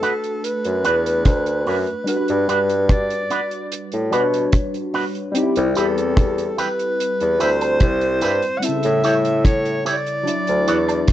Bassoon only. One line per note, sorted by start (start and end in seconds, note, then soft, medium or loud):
0.65 0.83 F#2 medium
0.85 1.23 E2 medium
1.26 1.64 D2 medium
1.67 1.86 F#2 medium
2.29 2.48 G2 loud
2.49 3.27 G2 loud
3.93 4.11 A2 medium
4.13 4.51 B2 medium
5.57 5.75 C2 loud
5.77 6.55 E2 loud
7.21 7.39 E2 medium
7.41 7.79 D2 medium
7.82 8.19 C2 loud
8.23 8.42 G2 loud
8.84 9.03 A2 loud
9.04 9.82 A2 loud
10.48 10.66 D2 medium
10.68 11.06 E2 medium